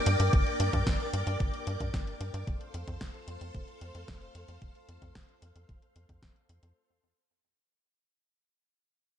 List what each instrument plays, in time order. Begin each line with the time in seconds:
Already playing: string machine A#4 D5 G5 D6
0.06 analog synth bass G2, closed hi-hat
0.20 analog synth bass G2, closed hi-hat
0.33 analog synth bass G1, kick, closed hi-hat
0.47 closed hi-hat
0.60 analog synth bass G2, closed hi-hat
0.73 analog synth bass G2, kick, closed hi-hat
0.87 analog synth bass G1, kick, snare, closed hi-hat
1.00 closed hi-hat
1.13 analog synth bass G2, closed hi-hat
1.27 analog synth bass G2, closed hi-hat
1.40 analog synth bass G1, kick, closed hi-hat
1.54 closed hi-hat
1.67 analog synth bass G2, closed hi-hat
1.80 analog synth bass G2, kick, closed hi-hat
1.94 analog synth bass G1, kick, snare, closed hi-hat
2.07 closed hi-hat
2.21 analog synth bass G2, closed hi-hat
2.34 analog synth bass G2, closed hi-hat
2.47 analog synth bass F1, string machine A4 C5 F5 C6, kick, closed hi-hat
2.61 closed hi-hat
2.74 analog synth bass F2, closed hi-hat
2.88 analog synth bass F2, kick, closed hi-hat
3.01 analog synth bass F1, kick, snare, closed hi-hat
3.14 closed hi-hat
3.28 analog synth bass F2, closed hi-hat
3.41 analog synth bass F2, closed hi-hat
3.54 analog synth bass F1, kick, closed hi-hat
3.68 closed hi-hat
3.81 analog synth bass F2, closed hi-hat
3.95 analog synth bass F2, closed hi-hat
4.08 analog synth bass F1, kick, snare, closed hi-hat
4.22 closed hi-hat
4.35 analog synth bass F2, closed hi-hat
4.48 analog synth bass F2, closed hi-hat
4.62 analog synth bass F1, kick, closed hi-hat
4.75 closed hi-hat
4.89 analog synth bass F2, closed hi-hat
5.02 analog synth bass F2, kick, closed hi-hat
5.15 analog synth bass F1, kick, snare, closed hi-hat
5.29 closed hi-hat
5.42 analog synth bass F2, closed hi-hat
5.56 analog synth bass F2, closed hi-hat
5.69 analog synth bass F1, kick, closed hi-hat
5.82 closed hi-hat
5.96 analog synth bass F2, closed hi-hat
6.09 analog synth bass F2, kick, closed hi-hat
6.23 analog synth bass F1, kick, snare, closed hi-hat
6.36 closed hi-hat
6.49 analog synth bass F2, closed hi-hat
6.63 analog synth bass F2, closed hi-hat